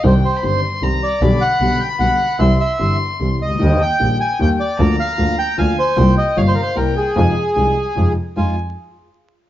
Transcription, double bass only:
X:1
M:3/4
L:1/8
Q:1/4=152
K:Fm
V:1 name="Double bass" clef=bass
C,, z G,,, z C,, z | =B,,, z B,,, z B,,, z | C,, z G,,, z C,, D,, | E,, z B,,, z E,, z |
=D,, z D,, z D,, z | C,, z G,,, z C,, z | F,, z C,, z F,, z | F,, z4 z |]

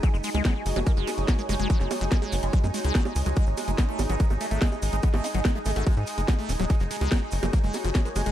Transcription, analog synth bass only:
X:1
M:4/4
L:1/16
Q:1/4=144
K:F#dor
V:1 name="Analog synth bass" clef=bass
z F,,, z C,, z2 F,,, F,,, z F,,, z F,,, z2 F,,, F,,, | z F,,, z F,,, z2 F,,, F,,, z F,, z C,, z2 C,, C,, | z G,,, z F,,, z2 G,,, G,,, z G,,, z G,,, z2 G,,, G,,, | z G,,, z G,,, z2 G,,, G,,, z G,, z F,,, z2 D,,, D,,, |
z F,,, z C,, z2 F,,, F,,, z F,,, z F,,, z2 F,,, F,,, |]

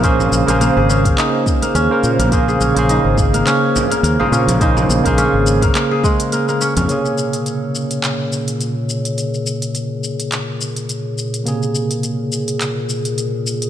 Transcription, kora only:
X:1
M:4/4
L:1/16
Q:"Swing 16ths" 1/4=105
K:Bbm
V:1 name="Kora"
D z2 B, B, A D2 E z2 B, D z2 B, | B, A D2 E z2 B, D z2 B, B, A D2 | E z2 B, D z2 B, B, A A, z B, B, D D | z16 |
z16 | z16 |]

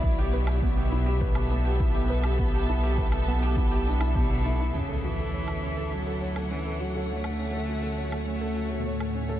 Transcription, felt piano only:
X:1
M:4/4
L:1/16
Q:1/4=102
K:Glyd
V:1 name="Felt piano"
E G B G B, G E G B G B, G E G B G | B, G E G B G B, G E G D E G E E E | C A F A c A C A F A c A C A F A | c A C A F A c A C A F A c A C A |]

